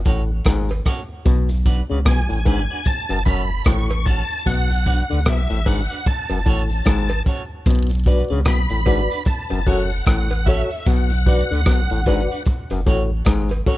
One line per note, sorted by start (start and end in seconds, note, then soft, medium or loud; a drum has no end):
0.05 0.41 A1 loud
0.05 0.30 A2 medium
0.05 0.20 C#4 medium
0.05 0.21 F#4 loud
0.05 0.21 A4 medium
0.05 0.21 C#5 loud
0.05 kick loud
0.05 closed hi-hat medium
0.45 0.81 G#1 medium
0.45 0.70 G#2 medium
0.45 kick loud
0.45 cross-stick loud
0.45 closed hi-hat medium
0.69 closed hi-hat soft
0.69 cowbell medium
0.86 1.00 C#4 medium
0.86 1.00 F#4 loud
0.86 1.00 A4 loud
0.86 1.01 C#5 medium
0.86 kick medium
0.86 cross-stick medium
0.86 closed hi-hat medium
1.25 1.82 B1 loud
1.25 1.49 B2 medium
1.25 kick loud
1.25 closed hi-hat loud
1.49 closed hi-hat medium
1.66 1.80 D4 medium
1.66 1.80 F#4 loud
1.66 1.80 B4 loud
1.66 1.81 D5 loud
1.66 kick medium
1.66 closed hi-hat medium
1.90 2.05 C#2 medium
1.90 1.99 C#3 medium
1.90 1.98 D4 soft
1.90 1.98 F#4 soft
1.90 1.98 B4 medium
1.90 1.98 D5 medium
2.05 2.27 B1 medium
2.05 2.20 B2 medium
2.05 2.89 G#5 loud
2.05 kick loud
2.05 cross-stick loud
2.05 closed hi-hat loud
2.29 2.45 A1 medium
2.29 2.39 A2 medium
2.29 closed hi-hat medium
2.45 2.67 G#1 medium
2.45 2.60 G#2 medium
2.45 2.61 D4 loud
2.45 2.61 F#4 medium
2.45 2.61 B4 medium
2.45 2.61 D5 medium
2.45 kick loud
2.45 closed hi-hat medium
2.45 cowbell medium
2.71 2.78 D4 medium
2.71 2.78 F#4 medium
2.71 2.78 B4 medium
2.71 2.78 D5 medium
2.85 3.23 A5 loud
2.85 kick loud
2.85 closed hi-hat medium
3.09 3.24 F#1 loud
3.09 3.19 F#2 medium
3.09 closed hi-hat medium
3.09 cowbell medium
3.25 3.61 F#1 medium
3.25 3.50 F#2 medium
3.25 3.41 C#4 medium
3.25 3.41 F#4 medium
3.25 3.41 A4 loud
3.25 3.41 C#5 loud
3.25 3.67 B5 loud
3.25 kick loud
3.25 closed hi-hat medium
3.65 4.22 A1 medium
3.65 3.90 A2 loud
3.65 4.07 C#6 loud
3.65 kick loud
3.65 cross-stick loud
3.65 closed hi-hat medium
3.89 closed hi-hat soft
3.89 cowbell medium
4.06 4.21 C#4 medium
4.06 4.21 F#4 medium
4.06 4.21 A4 loud
4.06 4.21 C#5 medium
4.06 4.47 A5 loud
4.06 kick loud
4.06 closed hi-hat medium
4.31 closed hi-hat soft
4.46 5.02 B1 loud
4.46 4.70 B2 medium
4.46 5.29 F#5 loud
4.46 kick loud
4.46 closed hi-hat loud
4.70 closed hi-hat medium
4.86 5.01 D4 medium
4.86 5.01 F#4 medium
4.86 5.01 B4 loud
4.86 5.01 D5 medium
4.86 kick medium
4.86 closed hi-hat medium
5.10 5.25 D2 medium
5.10 5.20 D3 medium
5.10 5.18 D4 soft
5.10 5.18 F#4 soft
5.10 5.18 B4 medium
5.10 5.18 D5 medium
5.26 5.47 B1 medium
5.26 5.41 B2 medium
5.26 5.68 E5 loud
5.26 kick loud
5.26 cross-stick loud
5.26 closed hi-hat medium
5.50 5.65 A1 loud
5.50 5.60 A2 medium
5.50 closed hi-hat medium
5.66 5.87 G#1 medium
5.66 5.81 G#2 medium
5.66 5.80 D4 medium
5.66 5.81 F#4 medium
5.66 5.81 B4 medium
5.66 5.81 D5 medium
5.66 6.08 F#5 medium
5.66 kick medium
5.66 open hi-hat medium
5.66 cowbell medium
5.90 5.99 D4 soft
5.90 5.98 F#4 medium
5.90 5.98 B4 medium
5.90 5.98 D5 medium
6.06 7.23 A5 medium
6.06 kick loud
6.06 closed hi-hat medium
6.30 6.45 F#1 loud
6.30 6.40 F#2 medium
6.30 closed hi-hat medium
6.30 cowbell medium
6.46 6.82 A1 medium
6.46 6.70 A2 medium
6.46 6.61 C#4 medium
6.46 6.61 F#4 medium
6.46 6.61 A4 medium
6.46 6.61 C#5 loud
6.46 kick loud
6.46 closed hi-hat medium
6.70 closed hi-hat soft
6.85 7.21 G#1 loud
6.85 7.10 G#2 medium
6.85 kick loud
6.85 cross-stick loud
6.85 closed hi-hat loud
7.09 closed hi-hat soft
7.09 cowbell medium
7.26 7.41 C#4 medium
7.26 7.41 F#4 loud
7.26 7.42 A4 medium
7.26 7.42 C#5 loud
7.26 kick loud
7.26 closed hi-hat medium
7.66 8.22 B1 loud
7.66 7.90 B2 medium
7.66 kick loud
7.66 closed hi-hat loud
7.66 vibraslap medium
7.89 closed hi-hat medium
8.06 8.21 D4 medium
8.06 8.28 F#4 medium
8.06 8.21 F#4 medium
8.06 8.29 B4 medium
8.06 8.21 B4 medium
8.06 8.22 D5 medium
8.06 8.29 D5 loud
8.06 kick medium
8.06 closed hi-hat medium
8.30 8.45 C#2 medium
8.30 8.40 C#3 medium
8.30 8.39 D4 soft
8.30 8.38 F#4 soft
8.30 8.38 B4 medium
8.30 8.38 D5 medium
8.45 8.67 B1 medium
8.45 8.60 B2 medium
8.45 9.23 B5 loud
8.45 kick loud
8.45 cross-stick loud
8.45 closed hi-hat loud
8.69 8.85 A1 medium
8.69 8.80 A2 medium
8.69 closed hi-hat medium
8.86 9.08 G#1 loud
8.86 9.01 G#2 medium
8.86 9.01 D4 medium
8.86 9.09 F#4 medium
8.86 9.01 F#4 medium
8.86 9.01 B4 loud
8.86 9.09 B4 medium
8.86 9.02 D5 medium
8.86 9.09 D5 loud
8.86 kick medium
8.86 closed hi-hat medium
8.86 cowbell medium
9.10 9.19 D4 soft
9.10 9.19 F#4 medium
9.10 9.19 B4 medium
9.10 9.19 D5 medium
9.10 closed hi-hat soft
9.25 9.68 A5 loud
9.25 kick loud
9.25 closed hi-hat medium
9.50 9.65 F#1 loud
9.50 9.60 F#2 medium
9.50 closed hi-hat medium
9.50 cowbell medium
9.66 10.02 F#1 medium
9.66 9.91 F#2 medium
9.66 9.81 C#4 medium
9.66 9.89 F#4 medium
9.66 9.82 F#4 medium
9.66 9.89 A4 medium
9.66 9.82 A4 medium
9.66 9.89 C#5 loud
9.66 9.82 C#5 medium
9.66 10.05 F#5 medium
9.66 kick loud
9.66 closed hi-hat medium
9.90 closed hi-hat soft
10.06 10.63 A1 loud
10.06 10.31 A2 medium
10.06 10.48 F#5 medium
10.06 kick loud
10.06 cross-stick loud
10.06 closed hi-hat medium
10.30 closed hi-hat soft
10.30 cowbell medium
10.46 10.61 C#4 medium
10.46 10.61 F#4 medium
10.46 10.69 F#4 medium
10.46 10.62 A4 loud
10.46 10.69 A4 medium
10.46 10.62 C#5 loud
10.46 10.70 C#5 loud
10.46 10.88 E5 medium
10.46 kick medium
10.46 closed hi-hat medium
10.71 closed hi-hat soft
10.86 11.43 B1 loud
10.86 11.11 B2 medium
10.86 12.43 F#5 loud
10.86 kick loud
10.86 closed hi-hat loud
11.10 closed hi-hat medium
11.26 11.41 D4 medium
11.26 11.49 F#4 medium
11.26 11.42 F#4 medium
11.26 11.49 B4 medium
11.26 11.42 B4 medium
11.26 11.49 D5 loud
11.26 11.42 D5 medium
11.26 kick medium
11.26 closed hi-hat medium
11.51 11.65 D2 medium
11.51 11.61 D3 medium
11.51 11.59 D4 medium
11.51 11.59 F#4 medium
11.51 11.59 B4 medium
11.51 11.59 D5 medium
11.66 11.88 B1 medium
11.66 11.81 B2 medium
11.66 kick loud
11.66 cross-stick loud
11.66 closed hi-hat loud
11.90 12.05 A1 loud
11.90 12.01 A2 medium
11.90 closed hi-hat medium
12.06 12.28 G#1 medium
12.06 12.22 G#2 medium
12.06 12.22 D4 medium
12.06 12.29 F#4 medium
12.06 12.22 F#4 medium
12.06 12.29 B4 medium
12.06 12.22 B4 loud
12.06 12.29 D5 loud
12.06 12.22 D5 loud
12.06 kick medium
12.06 closed hi-hat medium
12.06 cowbell medium
12.31 12.39 D4 medium
12.31 12.39 F#4 medium
12.31 12.39 B4 medium
12.31 12.39 D5 medium
12.45 kick loud
12.45 closed hi-hat medium
12.70 12.85 F#1 loud
12.70 12.80 F#2 medium
12.70 closed hi-hat medium
12.70 cowbell medium
12.86 13.22 A1 medium
12.86 13.11 A2 medium
12.86 13.02 C#4 medium
12.86 13.08 F#4 medium
12.86 13.02 F#4 medium
12.86 13.09 A4 medium
12.86 13.02 A4 loud
12.86 13.09 C#5 medium
12.86 13.02 C#5 loud
12.86 kick medium
12.86 closed hi-hat medium
13.25 13.62 G#1 loud
13.25 13.50 G#2 medium
13.25 kick loud
13.25 cross-stick loud
13.25 closed hi-hat medium
13.49 closed hi-hat soft
13.49 cowbell medium
13.66 13.78 C#4 medium
13.66 13.78 F#4 medium
13.66 13.78 F#4 loud
13.66 13.78 A4 medium
13.66 13.78 A4 loud
13.66 13.78 C#5 loud
13.66 kick loud
13.66 closed hi-hat medium